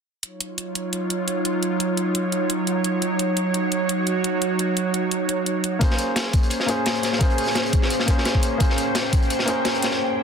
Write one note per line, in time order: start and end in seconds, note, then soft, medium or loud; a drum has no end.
0.23 5.77 F#3 medium
0.23 5.77 D#4 medium
0.23 2.99 F4 medium
0.23 5.77 C#5 medium
0.23 closed hi-hat medium
0.41 closed hi-hat medium
0.58 closed hi-hat medium
0.75 closed hi-hat medium
0.93 closed hi-hat medium
1.10 closed hi-hat medium
1.28 closed hi-hat medium
1.45 closed hi-hat medium
1.63 closed hi-hat medium
1.80 closed hi-hat medium
1.97 closed hi-hat medium
2.15 closed hi-hat medium
2.32 closed hi-hat medium
2.50 closed hi-hat medium
2.67 closed hi-hat medium
2.84 closed hi-hat medium
3.02 5.79 F#4 medium
3.02 closed hi-hat medium
3.19 closed hi-hat medium
3.37 closed hi-hat medium
3.54 closed hi-hat medium
3.72 closed hi-hat medium
3.89 closed hi-hat medium
4.07 closed hi-hat medium
4.24 closed hi-hat medium
4.42 closed hi-hat medium
4.59 closed hi-hat medium
4.77 closed hi-hat medium
4.94 closed hi-hat medium
5.11 closed hi-hat medium
5.29 closed hi-hat medium
5.46 closed hi-hat medium
5.64 closed hi-hat medium
5.79 6.65 A#3 medium
5.79 10.23 A#3 medium
5.79 6.66 C#4 medium
5.79 10.23 C#4 medium
5.79 8.58 G#4 medium
5.79 6.67 G#4 medium
5.79 10.23 C5 medium
5.79 kick loud
5.79 closed hi-hat medium
5.84 6.68 C5 medium
5.91 snare soft
5.99 closed hi-hat medium
6.16 snare loud
6.16 closed hi-hat medium
6.33 kick medium
6.33 closed hi-hat medium
6.43 closed hi-hat soft
6.50 closed hi-hat medium
6.60 snare soft
6.66 7.17 A#3 medium
6.66 7.18 C#4 medium
6.66 7.19 G#4 medium
6.66 closed hi-hat medium
6.71 7.20 C5 medium
6.86 snare loud
6.86 closed hi-hat medium
6.95 closed hi-hat soft
7.03 snare soft
7.03 closed hi-hat medium
7.13 snare soft
7.18 8.04 A#3 medium
7.18 8.06 C#4 medium
7.18 8.06 G#4 medium
7.18 kick loud
7.18 closed hi-hat medium
7.23 8.07 C5 medium
7.30 closed hi-hat soft
7.38 closed hi-hat medium
7.38 open hi-hat medium
7.47 snare soft
7.55 snare loud
7.55 closed hi-hat medium
7.66 closed hi-hat soft
7.73 kick medium
7.73 closed hi-hat medium
7.82 snare soft
7.90 closed hi-hat medium
8.00 snare soft
8.06 8.56 A#3 medium
8.06 8.58 C#4 medium
8.06 8.59 G#4 medium
8.06 kick medium
8.06 closed hi-hat medium
8.10 8.60 C5 medium
8.18 snare soft
8.25 snare loud
8.25 closed hi-hat medium
8.35 kick medium
8.42 closed hi-hat medium
8.58 9.44 A#3 medium
8.58 9.45 C#4 medium
8.58 9.46 G#4 medium
8.58 10.23 G5 medium
8.58 kick loud
8.58 closed hi-hat medium
8.63 9.47 C5 medium
8.70 snare soft
8.78 closed hi-hat medium
8.95 snare loud
8.95 closed hi-hat medium
9.13 kick medium
9.13 closed hi-hat medium
9.22 closed hi-hat soft
9.30 closed hi-hat medium
9.39 snare soft
9.45 9.97 A#3 medium
9.45 9.97 C#4 medium
9.45 9.98 G#4 medium
9.45 closed hi-hat medium
9.50 9.99 C5 medium
9.65 snare loud
9.65 closed hi-hat medium
9.75 closed hi-hat soft
9.82 snare medium
9.82 closed hi-hat medium
9.91 snare soft